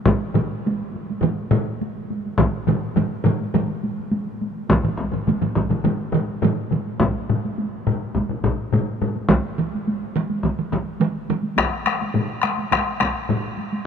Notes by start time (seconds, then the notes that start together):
0.06 taiko, taiko low-mid, taiko mid, taiko high
0.22 taiko high
0.34 taiko low-mid, taiko mid, taiko high
0.52 taiko high
0.66 taiko high
0.81 taiko high
0.95 taiko high
1.10 taiko high
1.21 taiko low-mid, taiko mid, taiko high
1.39 taiko high
1.51 taiko low-mid, taiko mid, taiko high
1.67 taiko high
1.81 taiko high
1.96 taiko high
2.10 taiko high
2.25 taiko high
2.38 taiko, taiko low-mid, taiko mid, taiko high
2.53 taiko high
2.67 taiko low-mid, taiko mid, taiko high
2.96 taiko low-mid, taiko mid, taiko high
3.11 taiko high
3.25 taiko low-mid, taiko mid, taiko high
3.41 taiko high
3.54 taiko low-mid, taiko mid, taiko high
3.69 taiko high
3.83 taiko high
3.98 taiko high
4.11 taiko high
4.26 taiko high
4.42 taiko high
4.56 taiko high
4.69 taiko, taiko low-mid, taiko mid, taiko high
4.83 taiko low-mid, taiko mid, taiko high
4.98 taiko, taiko high
5.12 taiko low-mid, taiko mid, taiko high
5.27 taiko low-mid, taiko mid, taiko high
5.41 taiko low-mid, taiko mid, taiko high
5.55 taiko, taiko low-mid, taiko mid, taiko high
5.70 taiko low-mid, taiko mid, taiko high
5.84 taiko low-mid, taiko mid, taiko high
6.00 taiko high
6.13 taiko low-mid, taiko mid, taiko high
6.28 taiko high
6.42 taiko low-mid, taiko mid, taiko high
6.57 taiko high
6.71 taiko low-mid, taiko mid, taiko high
6.86 taiko high
7.00 taiko, taiko low-mid, taiko high
7.29 taiko low-mid, taiko high
7.44 taiko high
7.58 taiko high
7.87 taiko low-mid, taiko high
8.15 taiko, taiko low-mid, taiko high
8.29 taiko low-mid
8.44 taiko, taiko low-mid, taiko high
8.73 taiko low-mid, taiko high
9.02 taiko low-mid, taiko high
9.15 taiko high
9.29 taiko, taiko mid, taiko high
9.58 taiko mid, taiko high
9.73 taiko high
9.87 taiko high
10.16 taiko mid, taiko high
10.29 taiko high
10.43 taiko, taiko mid, taiko high
10.59 taiko mid
10.72 taiko, taiko mid, taiko high
11.00 taiko mid, taiko high
11.30 taiko mid, taiko high
11.43 taiko high
11.56 taiko rim, taiko, taiko high
11.86 taiko rim, taiko high
12.01 taiko high
12.15 taiko low-mid, taiko high
12.43 taiko rim, taiko high
12.57 taiko high
12.72 taiko rim, taiko, taiko high
13.00 taiko rim, taiko, taiko high
13.29 taiko low-mid, taiko high
13.57 taiko high
13.73 taiko high